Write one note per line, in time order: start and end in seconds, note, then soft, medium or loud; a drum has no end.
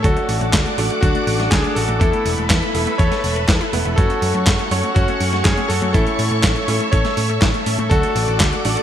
0.03 0.14 D2 loud
0.03 0.13 F#3 medium
0.03 0.75 A3 medium
0.03 0.75 D4 medium
0.03 0.75 F#4 medium
0.03 0.99 F#4 medium
0.03 1.05 A4 medium
0.03 0.75 A4 medium
0.03 5.90 A4 medium
0.03 1.99 D5 medium
0.03 1.99 F#5 medium
0.03 1.99 D6 medium
0.03 kick loud
0.03 closed hi-hat medium
0.16 0.25 A3 medium
0.16 closed hi-hat soft
0.29 0.39 A1 loud
0.29 0.34 D4 medium
0.29 open hi-hat loud
0.41 0.51 A1 loud
0.41 0.46 A3 medium
0.41 closed hi-hat soft
0.53 0.64 D2 loud
0.53 0.62 F#3 medium
0.53 kick loud
0.53 snare loud
0.53 clap loud
0.53 closed hi-hat medium
0.66 0.77 A3 medium
0.66 closed hi-hat soft
0.78 0.88 A1 medium
0.78 1.98 A3 medium
0.78 0.87 D4 loud
0.78 1.98 D4 medium
0.78 1.98 F#4 medium
0.78 1.98 A4 loud
0.78 open hi-hat loud
0.90 0.96 A3 medium
0.90 closed hi-hat soft
1.01 1.13 D2 medium
1.01 1.11 F#3 medium
1.01 1.49 D4 medium
1.01 1.53 F#4 medium
1.01 kick loud
1.01 closed hi-hat medium
1.15 1.24 A3 medium
1.15 closed hi-hat soft
1.27 1.48 A1 medium
1.27 1.33 D4 medium
1.27 open hi-hat loud
1.40 1.48 A3 medium
1.40 snare soft
1.40 closed hi-hat soft
1.51 1.62 D2 medium
1.51 1.57 F#3 loud
1.51 1.75 D4 medium
1.51 1.74 G#4 loud
1.51 kick loud
1.51 snare loud
1.51 clap medium
1.51 closed hi-hat medium
1.64 1.69 A3 medium
1.64 closed hi-hat soft
1.75 1.87 A1 medium
1.75 1.88 D4 medium
1.75 2.00 F#4 medium
1.75 1.98 A4 medium
1.75 open hi-hat loud
1.89 1.99 A1 loud
1.89 1.94 A3 loud
2.00 2.11 E2 loud
2.00 2.10 E3 medium
2.00 2.72 A3 medium
2.00 2.72 B3 medium
2.00 2.72 E4 medium
2.00 2.96 E4 medium
2.00 2.99 A4 loud
2.00 2.72 A4 medium
2.00 3.96 B4 medium
2.00 3.96 E5 medium
2.00 3.96 B5 medium
2.00 kick loud
2.00 closed hi-hat medium
2.13 2.22 A3 medium
2.13 closed hi-hat soft
2.25 2.36 E1 loud
2.25 2.31 B3 medium
2.25 open hi-hat loud
2.38 2.48 E1 loud
2.38 2.43 A3 medium
2.38 closed hi-hat soft
2.50 2.60 E2 loud
2.50 2.59 E3 medium
2.50 kick loud
2.50 snare loud
2.50 clap medium
2.50 closed hi-hat medium
2.62 2.74 A3 medium
2.62 closed hi-hat soft
2.75 2.85 E1 loud
2.75 2.89 A3 medium
2.75 2.84 B3 loud
2.75 2.89 B3 medium
2.75 2.89 E4 medium
2.75 2.89 A4 medium
2.75 open hi-hat loud
2.87 2.92 A3 medium
2.87 closed hi-hat soft
2.98 3.10 E2 medium
2.98 3.08 E3 medium
2.98 3.46 A4 medium
2.98 3.44 C#5 loud
2.98 kick loud
2.98 closed hi-hat medium
3.12 3.20 A3 medium
3.12 snare soft
3.12 closed hi-hat soft
3.24 3.44 E1 medium
3.24 3.33 B3 medium
3.24 open hi-hat loud
3.36 3.48 A4 loud
3.36 closed hi-hat soft
3.48 3.59 E2 medium
3.48 3.54 B4 medium
3.48 kick loud
3.48 snare loud
3.48 clap medium
3.48 closed hi-hat medium
3.61 3.66 E4 loud
3.61 closed hi-hat soft
3.73 3.83 E1 medium
3.73 3.95 A3 medium
3.73 3.82 B3 medium
3.73 3.95 B3 medium
3.73 3.95 E4 medium
3.73 3.95 B4 loud
3.73 open hi-hat loud
3.85 3.96 E1 loud
3.85 3.91 E5 medium
3.85 closed hi-hat soft
3.96 4.08 F#1 loud
3.96 4.06 F#3 medium
3.96 4.68 C#4 medium
3.96 4.68 F#4 medium
3.96 4.92 F#4 medium
3.96 4.98 A4 medium
3.96 4.68 A4 medium
3.96 7.87 C#5 medium
3.96 4.68 C#5 medium
3.96 5.92 F#5 medium
3.96 7.87 C#6 medium
3.96 kick loud
3.96 closed hi-hat medium
4.10 4.19 A3 medium
4.10 closed hi-hat soft
4.22 4.32 F#2 loud
4.22 4.28 C#4 medium
4.22 open hi-hat loud
4.34 4.45 F#2 loud
4.34 4.40 A3 medium
4.34 closed hi-hat soft
4.47 4.57 F#1 loud
4.47 4.56 F#3 medium
4.47 kick loud
4.47 snare loud
4.47 clap medium
4.47 closed hi-hat medium
4.59 4.71 A3 medium
4.59 closed hi-hat soft
4.71 4.82 F#2 medium
4.71 5.91 C#4 medium
4.71 4.80 C#4 loud
4.71 5.91 F#4 medium
4.71 5.91 A4 medium
4.71 5.91 C#5 loud
4.71 open hi-hat loud
4.84 4.89 A3 medium
4.84 closed hi-hat soft
4.95 5.06 F#1 medium
4.95 5.05 F#3 medium
4.95 5.42 C#4 medium
4.95 5.46 F#4 medium
4.95 kick loud
4.95 closed hi-hat medium
5.08 5.17 A3 medium
5.08 closed hi-hat soft
5.20 5.41 F#2 medium
5.20 5.26 C#4 medium
5.20 open hi-hat loud
5.33 5.42 A3 medium
5.33 snare soft
5.33 closed hi-hat soft
5.44 5.55 F#1 medium
5.44 5.51 F#3 loud
5.44 5.68 C#4 medium
5.44 5.67 G#4 loud
5.44 kick loud
5.44 snare loud
5.44 clap medium
5.44 closed hi-hat medium
5.57 5.63 A3 medium
5.57 closed hi-hat soft
5.68 5.80 F#2 medium
5.68 5.82 C#4 medium
5.68 5.93 F#4 medium
5.68 5.91 A4 medium
5.68 open hi-hat loud
5.82 5.92 F#2 loud
5.82 5.87 A3 loud
5.82 closed hi-hat soft
5.93 6.05 A1 loud
5.93 6.03 E3 medium
5.93 6.65 A3 medium
5.93 6.65 C#4 medium
5.93 6.65 E4 medium
5.93 6.89 E4 medium
5.93 6.92 A4 loud
5.93 8.83 A4 medium
5.93 6.65 A4 medium
5.93 7.89 E5 medium
5.93 kick loud
5.93 closed hi-hat medium
6.07 6.16 A3 medium
6.07 closed hi-hat soft
6.19 6.29 A2 loud
6.19 6.24 C#4 medium
6.19 open hi-hat loud
6.31 6.41 A2 loud
6.31 6.37 A3 medium
6.31 closed hi-hat soft
6.44 6.54 A1 loud
6.44 6.52 E3 medium
6.44 kick loud
6.44 snare loud
6.44 clap medium
6.44 closed hi-hat medium
6.56 6.68 A3 medium
6.56 closed hi-hat soft
6.68 6.78 A2 loud
6.68 6.83 A3 medium
6.68 6.77 C#4 loud
6.68 6.83 C#4 medium
6.68 6.83 E4 medium
6.68 6.83 A4 medium
6.68 open hi-hat loud
6.80 6.86 A3 medium
6.80 closed hi-hat soft
6.92 7.03 A1 medium
6.92 7.02 E3 medium
6.92 7.39 A4 medium
6.92 7.38 C#5 loud
6.92 kick loud
6.92 closed hi-hat medium
7.05 7.14 A3 medium
7.05 snare soft
7.05 closed hi-hat soft
7.17 7.38 A2 medium
7.17 7.23 C#4 medium
7.17 open hi-hat loud
7.30 7.39 A3 medium
7.42 7.52 A1 medium
7.42 7.47 E3 loud
7.42 kick loud
7.42 snare loud
7.42 clap medium
7.42 closed hi-hat medium
7.54 7.59 A3 medium
7.54 closed hi-hat soft
7.66 7.77 A2 medium
7.66 7.78 C#4 medium
7.66 open hi-hat loud
7.79 7.89 A2 loud
7.79 7.84 A3 loud
7.79 closed hi-hat soft
7.90 8.01 D2 loud
7.90 8.00 F#3 medium
7.90 8.62 A3 medium
7.90 8.62 D4 medium
7.90 8.62 F#4 medium
7.90 8.83 F#4 medium
7.90 8.83 A4 loud
7.90 8.62 A4 medium
7.90 8.83 D5 medium
7.90 8.83 F#5 medium
7.90 8.83 D6 medium
7.90 kick loud
7.90 closed hi-hat medium
8.03 8.12 A3 medium
8.03 closed hi-hat soft
8.16 8.26 A1 loud
8.16 8.21 D4 medium
8.16 open hi-hat loud
8.28 8.38 A1 loud
8.28 8.33 A3 medium
8.28 closed hi-hat soft
8.40 8.51 D2 loud
8.40 8.49 F#3 medium
8.40 kick loud
8.40 snare loud
8.40 clap medium
8.40 closed hi-hat medium
8.53 8.64 A3 medium
8.53 closed hi-hat soft
8.65 8.75 A1 loud
8.65 8.83 A3 medium
8.65 8.83 D4 medium
8.65 8.74 D4 loud
8.65 8.83 F#4 medium
8.65 8.83 A4 loud
8.65 open hi-hat loud
8.77 8.83 A3 medium
8.77 closed hi-hat soft